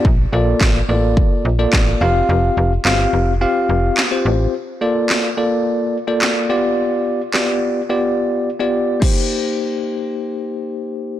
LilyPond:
<<
  \new Staff \with { instrumentName = "Tine electric piano" } { \time 4/4 \key c \dorian \tempo 4 = 107 r8 <bes f' a' d''>8. r16 <bes f' a' d''>4 r16 <bes f' a' d''>8. <c' f' g' f''>8~ | <c' f' g' f''>8. r16 <c' f' g' f''>8. r16 <c' f' g' f''>4 r16 <c' f' g' c''>8. | r8 <bes f' a' d''>8. r16 <bes f' a' d''>4 r16 <bes f' a' d''>8. <b f' g' d''>8~ | <b f' g' d''>8. r16 <b f' g' d''>8. r16 <b f' g' d''>4 r16 <b f' g' d''>8. |
<bes ees' g' c''>1 | }
  \new Staff \with { instrumentName = "FM bass" } { \clef bass \time 4/4 \key c \dorian bes,,8 bes,,8 a,,8 a,,8. r16 bes,,8 a,,8 f,,8 | f,,8 f,,8 g,,8 f,,8. r16 f,,8 r8 a,,8 | r1 | r1 |
r1 | }
  \new DrumStaff \with { instrumentName = "Drums" } \drummode { \time 4/4 bd4 <hc bd sn>4 bd4 <hc bd sn>4 | r4 <hc sn>4 r4 <hc sn>4 | r4 <hc sn>4 r4 <hc sn>4 | r4 <hc sn>4 r4 r4 |
<cymc bd>4 r4 r4 r4 | }
>>